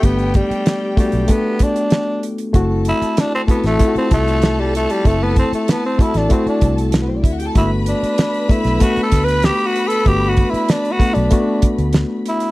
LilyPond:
<<
  \new Staff \with { instrumentName = "String section" } { \time 4/4 \key g \major \tempo 4 = 96 <g' g''>2.~ <g' g''>8 r8 | <a' a''>1~ | <a' a''>2. r32 <b b'>32 <c' c''>32 <d' d''>32 <e' e''>32 <fis' fis''>32 <g' g''>32 <a' a''>32 | <b' b''>1~ |
<b' b''>2.~ <b' b''>8 r8 | }
  \new Staff \with { instrumentName = "Tenor saxophone" } { \time 4/4 \key g \major b8 g4 g8 b8 d'4 r8 | r8 e'8 d'16 c'16 b16 a8 c'16 a8. g16 a16 g16 | a16 b16 c'16 a16 b16 c'16 e'16 d'16 c'16 d'8 r4 r16 | e'8 d'4 e'8 \tuplet 3/2 { fis'8 a'8 b'8 g'8 fis'8 a'8 } |
\tuplet 3/2 { g'8 fis'8 e'8 d'8 fis'8 d'8~ } d'8. r8. e'8 | }
  \new Staff \with { instrumentName = "Reed electric piano" } { \time 4/4 \key g \major <a b d' g'>4 r8 <a b d' fis'>8 <a b d' a'>4. r8 | <a c' e' fis'>4 r8 <a c' e' fis'>8 <a c' e' f' fis'>4. r8 | <a c' e' a'>4 r8 <a c' e' fis'>8 <a c' e' fis'>4. r8 | <a bes b d' fis'>4 r8 <a b d' a'>8 <a b d' fis'>4. r8 |
<a b d' fis'>4 r8 <a b d' fis'>8 <a b d' fis'>4. r8 | }
  \new Staff \with { instrumentName = "Fingered electric bass" } { \clef bass \time 4/4 \key g \major g,,8. r4 b,,16 r2 | fis,,8. r4 a,,16 r8 c,4~ c,16 r16 | fis,,8. r4 a,,16 r8 c,8. b,,16 d,8 | g,,8. r4 b,,16 r8 d,8. r8. |
g,,8. r4 b,,16 r8. d,8 r8. | }
  \new DrumStaff \with { instrumentName = "Drums" } \drummode { \time 4/4 <hh bd>16 hh16 <hh bd>16 hh16 <hh sn>8 <hh bd>16 hh16 <hh bd>8 <hh bd>16 hh16 <hh sn>8 hh16 hh16 | <hh bd>8 hh16 hh16 <hh sn>8 <hh bd>16 <hh sn>16 <hh bd>16 hh16 <hh bd>16 hh16 <hh sn>8 hh16 hh16 | <hh bd>8 <hh bd>16 hh16 <hh sn>8 <hh bd>16 <hh sn>16 <hh bd>16 hh16 <hh bd>16 hh16 <hh sn>8 <hh bd>16 hh16 | <hh bd>8 hh16 hh16 <hh sn>16 hh16 <hh bd>16 <hh sn>16 <hh bd>16 hh16 <hh bd>16 hh16 <hh sn>8 hh16 hh16 |
<hh bd>8 <hh bd>16 hh16 <hh sn>16 hh16 <hh bd>16 hh16 <hh bd>8 <hh bd>16 hh16 <hh sn>8 hh16 hh16 | }
>>